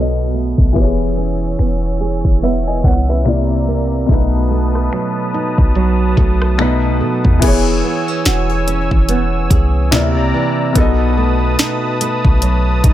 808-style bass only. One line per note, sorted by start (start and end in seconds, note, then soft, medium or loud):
0.00 0.54 B1 loud
0.58 0.75 B1 loud
0.76 1.55 E1 loud
1.59 2.22 E1 loud
2.25 2.81 E1 loud
2.84 4.05 C2 loud
4.09 4.89 B1 loud
5.58 6.15 B1 loud
6.17 7.02 B1 loud
7.01 7.24 F#3 medium
7.25 7.41 D#2 loud
7.42 7.82 E1 loud
8.26 8.89 E1 loud
8.91 9.48 E1 loud
9.51 9.94 C2 loud
9.93 10.18 D2 loud
10.17 10.33 C2 loud
10.76 11.56 B1 loud
12.25 12.81 B1 loud
12.84 12.94 B1 loud